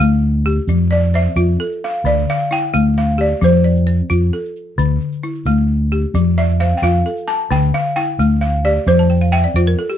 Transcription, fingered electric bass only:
0.00 0.58 D2 medium
0.67 1.26 F2 loud
1.36 1.56 F2 medium
2.04 2.24 D2 medium
2.74 3.32 D2 medium
3.42 4.00 F2 loud
4.10 4.30 F2 medium
4.78 4.97 D2 medium
5.46 6.04 D2 medium
6.14 6.73 F2 medium
6.82 7.02 F2 medium
7.51 7.70 D2 medium
8.19 8.77 D2 medium
8.87 9.45 F2 loud
9.54 9.74 F2 medium

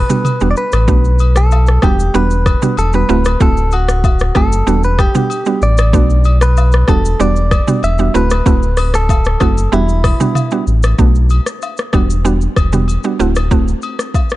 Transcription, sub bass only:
0.41 0.54 E1 medium
0.73 0.90 A1 loud
0.88 1.79 B1 loud
1.83 2.10 E1 loud
2.14 2.56 E1 loud
2.78 3.05 E1 medium
3.09 3.36 D1 loud
3.41 4.31 D1 loud
4.36 4.63 F#1 medium
4.67 5.08 E1 loud
5.62 5.95 A1 loud
5.93 6.84 B1 loud
6.88 7.15 E1 loud
7.20 7.61 E1 loud
7.83 8.10 E1 medium
8.15 8.42 D1 loud
8.46 9.37 D1 loud
9.41 9.68 F#1 medium
9.72 10.14 E1 loud
10.67 10.94 A1 loud
10.99 11.40 B1 loud
11.93 12.48 E1 loud
12.57 12.98 E1 medium
13.20 13.74 D1 loud

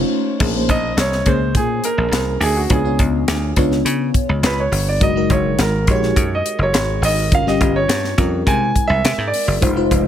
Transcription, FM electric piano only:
0.00 0.42 A3 loud
0.00 0.40 C#4 loud
0.00 0.42 D#4 loud
0.00 0.42 F4 loud
0.00 0.41 C5 loud
0.39 0.50 A#3 medium
0.39 0.50 C#4 medium
0.39 0.50 G#4 medium
0.39 0.50 C5 loud
0.54 1.03 A#3 medium
0.54 1.03 C#4 medium
0.54 1.03 G#4 medium
0.54 1.03 C5 medium
1.26 2.04 A#3 medium
1.26 2.04 C#4 medium
1.26 2.04 G#4 medium
1.26 2.05 C5 medium
2.69 2.80 B3 medium
2.69 2.80 D4 medium
2.69 2.80 F4 medium
2.69 2.80 C#5 medium
2.85 3.33 B3 medium
2.85 3.33 D4 medium
2.85 3.34 F4 medium
2.85 3.34 C#5 medium
3.57 4.35 B3 medium
3.57 4.35 D4 medium
3.57 4.35 F4 medium
3.57 4.35 C#5 loud
5.00 5.11 G#3 medium
5.00 5.11 D#4 medium
5.00 5.11 F#4 medium
5.00 5.11 A#4 medium
5.15 5.64 G#3 medium
5.15 5.64 D#4 medium
5.15 5.65 F#4 medium
5.15 5.65 A#4 medium
5.88 6.65 G#3 medium
5.88 6.65 D#4 medium
5.88 6.66 F#4 medium
5.88 5.95 G4 medium
5.96 6.69 G#4 medium
7.32 7.42 G3 medium
7.32 7.42 C#4 medium
7.32 7.42 F4 medium
7.32 7.42 A#4 medium
7.46 7.95 G3 medium
7.46 7.95 C#4 medium
7.46 7.95 F4 medium
7.46 7.95 G4 medium
8.18 8.47 G3 medium
8.18 8.47 C#4 medium
8.18 8.48 F4 medium
8.18 8.46 A#4 medium
8.46 9.39 G#3 medium
8.46 9.39 C4 medium
8.46 9.39 E4 medium
8.46 9.40 A#4 medium
9.61 9.71 G#3 medium
9.61 9.72 D#4 medium
9.61 9.72 F4 medium
9.61 9.72 C5 medium
9.76 10.07 G#3 medium
9.76 10.07 D#4 medium
9.76 10.07 F4 medium
9.76 10.07 C5 loud

